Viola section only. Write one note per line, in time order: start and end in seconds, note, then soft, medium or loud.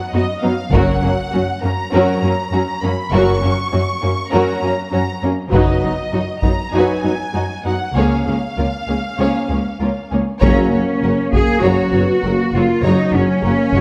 0.15 0.23 F#3 soft
0.15 0.23 B3 soft
0.44 0.52 F#3 soft
0.44 0.52 B3 soft
0.74 1.01 F#3 medium
0.74 1.01 C#4 soft
1.05 1.13 F#3 soft
1.05 1.13 C#4 soft
1.34 1.42 F#3 soft
1.34 1.42 C#4 soft
1.64 1.72 F#3 soft
1.64 1.72 C#4 soft
1.94 2.21 F#3 medium
1.94 2.21 C#4 medium
2.23 2.31 F#3 soft
2.23 2.31 C#4 soft
2.54 2.62 F#3 soft
2.54 2.62 C#4 soft
2.84 2.92 F#3 soft
2.84 2.92 C#4 soft
3.14 3.41 F#3 medium
3.14 3.41 C#4 soft
3.44 3.52 F#3 soft
3.44 3.52 C#4 soft
3.72 3.80 F#3 soft
3.72 3.80 C#4 soft
4.03 4.11 F#3 soft
4.03 4.11 C#4 soft
4.33 4.61 F#3 medium
4.33 4.60 C#4 medium
4.62 4.70 F#3 soft
4.62 4.70 C#4 soft
4.92 5.01 F#3 soft
4.92 5.00 C#4 soft
5.23 5.31 F#3 soft
5.23 5.31 C#4 soft
5.53 5.81 F#3 medium
5.53 5.81 D#4 medium
5.82 5.90 F#3 soft
5.82 5.91 D#4 soft
6.14 6.22 F#3 soft
6.14 6.22 D#4 soft
6.43 6.51 F#3 soft
6.43 6.51 D#4 soft
6.74 7.02 F#3 soft
6.74 7.02 D#4 soft
7.04 7.12 F#3 soft
7.04 7.12 D#4 soft
7.34 7.42 F#3 soft
7.34 7.42 D#4 soft
7.65 7.74 F#3 soft
7.65 7.73 D#4 soft
7.97 8.25 A#3 soft
7.97 8.25 C#4 soft
8.28 8.36 A#3 soft
8.28 8.36 C#4 soft
8.59 8.67 A#3 soft
8.59 8.67 C#4 soft
8.89 8.97 A#3 soft
8.89 8.97 C#4 soft
9.20 9.48 A#3 soft
9.20 9.48 C#4 soft
9.51 9.59 A#3 soft
9.51 9.60 C#4 soft
9.83 9.91 A#3 soft
9.83 9.91 C#4 soft
10.13 10.21 A#3 soft
10.13 10.21 C#4 soft
10.44 10.71 F#3 medium
10.74 10.82 F#3 soft
11.04 11.12 F#3 soft
11.34 11.42 F#3 soft
11.63 11.91 F#3 soft
11.94 12.02 F#3 soft
12.25 12.33 F#3 soft
12.56 12.64 F#3 soft
12.86 13.13 F#3 soft
13.16 13.24 F#3 soft
13.46 13.54 F#3 soft
13.76 13.81 F#3 soft